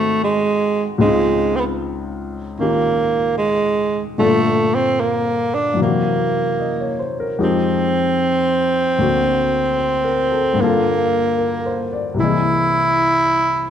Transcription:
Already playing: grand piano G#2 D#3 C4 F#4 A4, tenor saxophone A3
0.24 tenor saxophone G#3
0.98 grand piano C#2 C#3 C4 D#4, tenor saxophone G#3
1.03 grand piano F4
1.56 tenor saxophone C4
1.60 tenor saxophone B3
2.59 grand piano D#3 C#4 F4 G4, tenor saxophone A#3
3.38 tenor saxophone G#3
4.18 grand piano G2 A#2 D3 F4 A4, tenor saxophone A3
4.75 tenor saxophone C4
5.00 tenor saxophone A#3
5.55 tenor saxophone D4
5.74 grand piano F#2 E3
5.79 grand piano C3 A#3, tenor saxophone A#3
5.85 grand piano F#4
6.60 grand piano D#5
6.80 grand piano C#5
6.99 grand piano C5
7.20 grand piano A#4
7.39 grand piano F2 F3 G#3 D#4 G4
7.44 tenor saxophone C4
8.98 grand piano D2 D3 A#3 C4 F#4
9.78 grand piano C5
10.04 grand piano A#4
10.31 grand piano A4
10.53 grand piano G2 D3
10.59 grand piano A#3 F4, tenor saxophone A#3
10.64 grand piano A4
11.38 grand piano A#4
11.66 grand piano C5
11.93 grand piano D5
12.14 grand piano C2 C3
12.19 grand piano E3 A#3 D#5, tenor saxophone E4
12.25 grand piano G#4

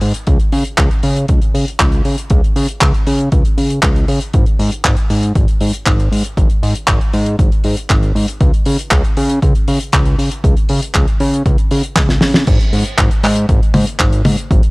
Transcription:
0.01 analog synth bass G#2, open hi-hat
0.14 closed hi-hat
0.27 analog synth bass C#2, kick, closed hi-hat
0.39 closed hi-hat
0.52 analog synth bass C#3, open hi-hat
0.65 closed hi-hat
0.78 analog synth bass C#2, kick, clap, closed hi-hat
0.91 closed hi-hat
1.03 analog synth bass C#3, open hi-hat
1.16 closed hi-hat
1.28 analog synth bass C#2, kick, closed hi-hat
1.42 closed hi-hat
1.54 analog synth bass C#3, open hi-hat
1.68 closed hi-hat
1.79 analog synth bass C#2, kick, clap, closed hi-hat
1.92 closed hi-hat
2.05 analog synth bass C#3, open hi-hat
2.18 closed hi-hat
2.30 analog synth bass C#2, kick, closed hi-hat
2.44 closed hi-hat
2.56 analog synth bass C#3, open hi-hat
2.68 closed hi-hat
2.81 analog synth bass C#2, kick, clap, closed hi-hat
2.94 closed hi-hat
3.07 analog synth bass C#3, open hi-hat
3.19 closed hi-hat
3.32 analog synth bass C#2, kick, closed hi-hat
3.45 closed hi-hat
3.58 analog synth bass C#3, open hi-hat
3.70 closed hi-hat
3.83 analog synth bass C#2, kick, clap, closed hi-hat
3.96 closed hi-hat
4.08 analog synth bass C#3, open hi-hat
4.21 closed hi-hat
4.33 analog synth bass G#1, kick, closed hi-hat
4.46 closed hi-hat
4.59 analog synth bass G#2, open hi-hat
4.72 closed hi-hat
4.84 analog synth bass G#1, kick, clap, closed hi-hat
4.97 closed hi-hat
5.10 analog synth bass G#2, open hi-hat
5.23 closed hi-hat
5.35 analog synth bass G#1, kick, closed hi-hat
5.48 closed hi-hat
5.61 analog synth bass G#2, open hi-hat
5.73 closed hi-hat
5.86 analog synth bass G#1, kick, clap, closed hi-hat
6.00 closed hi-hat
6.12 analog synth bass G#2, open hi-hat
6.25 closed hi-hat
6.37 analog synth bass G#1, kick, closed hi-hat
6.50 closed hi-hat
6.63 analog synth bass G#2, open hi-hat
6.75 closed hi-hat
6.88 analog synth bass G#1, kick, clap, closed hi-hat
7.01 closed hi-hat
7.13 analog synth bass G#2, open hi-hat
7.26 closed hi-hat
7.39 analog synth bass G#1, kick, closed hi-hat
7.52 closed hi-hat
7.64 analog synth bass G#2, open hi-hat
7.77 closed hi-hat
7.90 analog synth bass G#1, kick, clap, closed hi-hat
8.03 closed hi-hat
8.15 analog synth bass G#2, open hi-hat
8.28 closed hi-hat
8.41 analog synth bass C#2, kick, closed hi-hat
8.54 closed hi-hat
8.65 analog synth bass C#3, open hi-hat
8.79 closed hi-hat
8.91 analog synth bass C#2, kick, clap, closed hi-hat
9.04 closed hi-hat
9.17 analog synth bass C#3, open hi-hat
9.29 closed hi-hat
9.42 analog synth bass C#2, kick, closed hi-hat
9.55 closed hi-hat
9.68 analog synth bass C#3, open hi-hat
9.80 closed hi-hat
9.93 analog synth bass C#2, kick, clap, closed hi-hat
10.06 closed hi-hat
10.19 analog synth bass C#3, open hi-hat
10.31 closed hi-hat
10.44 analog synth bass C#2, kick, closed hi-hat
10.57 closed hi-hat
10.69 analog synth bass C#3, open hi-hat
10.82 closed hi-hat
10.94 analog synth bass C#2, kick, clap, closed hi-hat
11.08 closed hi-hat
11.20 analog synth bass C#3, open hi-hat
11.34 closed hi-hat
11.46 analog synth bass C#2, kick, closed hi-hat
11.58 closed hi-hat
11.71 analog synth bass C#3, open hi-hat
11.83 closed hi-hat
11.96 analog synth bass C#2, kick, snare, clap, closed hi-hat
12.09 snare, closed hi-hat
12.21 analog synth bass C#3, snare, open hi-hat
12.34 snare, closed hi-hat
12.47 analog synth bass G#1, kick, closed hi-hat, crash
12.60 closed hi-hat
12.73 analog synth bass G#2, open hi-hat
12.85 closed hi-hat
12.98 analog synth bass G#1, kick, clap, closed hi-hat
13.11 closed hi-hat
13.23 analog synth bass G#2, clap, open hi-hat
13.35 closed hi-hat
13.49 analog synth bass G#1, kick, closed hi-hat
13.63 closed hi-hat
13.74 analog synth bass G#2, open hi-hat, high tom
13.87 closed hi-hat
14.00 analog synth bass G#1, kick, clap, closed hi-hat
14.13 closed hi-hat
14.25 analog synth bass G#2, open hi-hat, high tom
14.38 closed hi-hat
14.51 analog synth bass G#1, kick, closed hi-hat
14.63 closed hi-hat

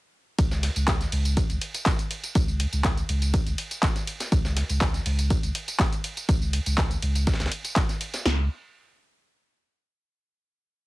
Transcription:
0.39 sub bass C#2, kick, closed hi-hat, ride, tambourine
0.51 snare, tambourine
0.63 snare, closed hi-hat, open hi-hat, ride
0.76 sub bass C#2, closed hi-hat, tambourine
0.88 kick, snare, clap, closed hi-hat, ride, tambourine
1.01 snare, closed hi-hat, tambourine
1.12 sub bass C#2, open hi-hat, ride
1.25 closed hi-hat, tambourine
1.37 kick, closed hi-hat, ride, tambourine
1.50 sub bass C#2, closed hi-hat, tambourine
1.61 closed hi-hat, open hi-hat, ride
1.74 closed hi-hat, tambourine
1.86 sub bass G#1, kick, snare, clap, closed hi-hat, ride, tambourine
1.99 closed hi-hat, tambourine
2.11 closed hi-hat, open hi-hat, ride
2.24 closed hi-hat, tambourine
2.35 sub bass C#2, kick, closed hi-hat, ride, tambourine
2.48 tambourine
2.60 closed hi-hat, open hi-hat, ride
2.73 sub bass C#2, closed hi-hat, tambourine
2.84 kick, snare, clap, closed hi-hat, ride, tambourine
2.97 closed hi-hat, tambourine
3.09 sub bass C#2, closed hi-hat, open hi-hat, ride
3.22 closed hi-hat, tambourine
3.34 kick, closed hi-hat, ride, tambourine
3.47 sub bass C#2, closed hi-hat, tambourine
3.58 closed hi-hat, open hi-hat, ride
3.71 closed hi-hat, tambourine
3.83 sub bass G#1, kick, snare, clap, closed hi-hat, ride, tambourine
3.96 snare, closed hi-hat, tambourine
4.07 closed hi-hat, open hi-hat, ride
4.20 snare, closed hi-hat, tambourine
4.32 sub bass C#2, kick, closed hi-hat, ride, tambourine
4.45 snare, tambourine
4.57 snare, closed hi-hat, open hi-hat, ride
4.69 sub bass C#2, closed hi-hat, tambourine
4.81 kick, snare, clap, closed hi-hat, ride, tambourine
4.94 snare, closed hi-hat, tambourine
5.06 sub bass C#2, open hi-hat, ride
5.19 closed hi-hat, tambourine
5.30 kick, closed hi-hat, ride, tambourine
5.43 sub bass C#2, closed hi-hat, tambourine
5.55 closed hi-hat, open hi-hat, ride
5.68 closed hi-hat, tambourine
5.80 sub bass G#1, kick, snare, clap, closed hi-hat, ride, tambourine
5.93 closed hi-hat, tambourine
6.04 closed hi-hat, open hi-hat, ride
6.17 closed hi-hat, tambourine
6.29 sub bass C#2, kick, closed hi-hat, ride, tambourine
6.42 tambourine
6.53 closed hi-hat, open hi-hat, ride
6.66 sub bass C#2, closed hi-hat, tambourine
6.78 kick, snare, clap, closed hi-hat, ride, tambourine
6.91 closed hi-hat, tambourine
7.02 sub bass C#2, closed hi-hat, open hi-hat, ride
7.15 closed hi-hat, tambourine
7.27 kick, snare, closed hi-hat, ride, tambourine
7.34 snare, closed hi-hat
7.40 sub bass C#2, snare, closed hi-hat, tambourine
7.46 snare, closed hi-hat
7.52 closed hi-hat, open hi-hat, ride
7.65 closed hi-hat, tambourine
7.76 sub bass G#1, kick, snare, clap, closed hi-hat, ride, tambourine
7.89 snare, closed hi-hat, tambourine
8.01 closed hi-hat, open hi-hat, ride
8.14 snare, closed hi-hat, tambourine
8.25 sub bass C#2, snare

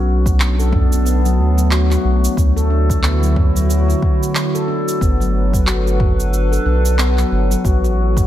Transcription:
Already playing: analog synth bass B1, ambient pad A3 B3 D4, handpan F#4
0.26 kick, shaker
0.40 clap, shaker
0.59 handpan A4, shaker
0.73 handpan D4, kick, mid tom
0.92 shaker
1.05 handpan B3, shaker
1.25 handpan F#3, shaker
1.39 analog synth bass D2
1.57 handpan F#3, shaker
1.71 handpan F#4, clap, shaker
1.91 handpan F#4, clap, shaker
2.05 analog synth bass B1
2.25 shaker
2.37 analog synth bass D2, ambient pad D3 E4 F#4, kick, shaker
2.56 handpan A4, shaker
2.70 handpan D4
2.90 kick, shaker
3.03 handpan B3, clap, shaker
3.23 handpan F#3, shaker
3.36 kick, mid tom
3.55 handpan F#3, shaker
3.69 handpan F#4, shaker
3.89 handpan F#4, shaker
4.02 kick
4.23 shaker
4.35 clap, shaker
4.55 handpan A4, shaker
4.68 handpan D4
4.88 shaker
5.01 analog synth bass G1, handpan B3, ambient pad D4 A4 B4, kick, shaker
5.20 handpan F#3, shaker
5.53 handpan F#3, kick, shaker
5.67 handpan F#4, clap, shaker
5.86 handpan F#4, shaker
6.00 kick, mid tom
6.20 shaker
6.33 shaker
6.52 handpan A4, shaker
6.66 analog synth bass B1, handpan D4
6.85 shaker
6.98 handpan B3, clap, shaker
7.18 handpan F#3, clap, shaker
7.32 analog synth bass G1
7.51 handpan F#3, shaker
7.64 analog synth bass A1, ambient pad A3 C#4 E4, handpan F#4, kick, shaker
7.84 handpan F#4, shaker
8.17 kick, mid tom, shaker

